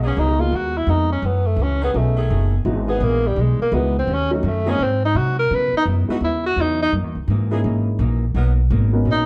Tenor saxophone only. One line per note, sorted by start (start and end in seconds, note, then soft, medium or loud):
0.07 0.21 C#4 medium
0.19 0.42 D#4 medium
0.40 0.57 F4 medium
0.56 0.79 F#4 medium
0.77 0.91 E4 medium
0.90 1.11 D#4 medium
1.12 1.28 C#4 medium
1.26 1.48 B3 medium
1.46 1.64 A3 medium
1.62 1.83 C#4 medium
1.84 1.98 B3 medium
1.97 2.54 A3 medium
2.89 3.05 B3 medium
3.03 3.28 A#3 medium
3.27 3.42 G3 medium
3.40 3.61 G#3 medium
3.62 3.76 A#3 medium
3.74 3.96 B3 medium
3.99 4.15 C4 medium
4.14 4.33 C#4 loud
4.34 4.49 F#3 medium
4.47 4.71 A3 medium
4.70 4.85 C#4 loud
4.83 5.04 C4 medium
5.05 5.18 D#4 medium
5.17 5.38 F#4 medium
5.39 5.56 A#4 medium
5.54 5.75 B4 loud
5.77 5.83 D#4 medium
6.24 6.44 E4 medium
6.46 6.62 F#4 loud
6.61 6.82 D#4 medium
6.82 6.93 D#4 loud
9.11 9.26 D#4 medium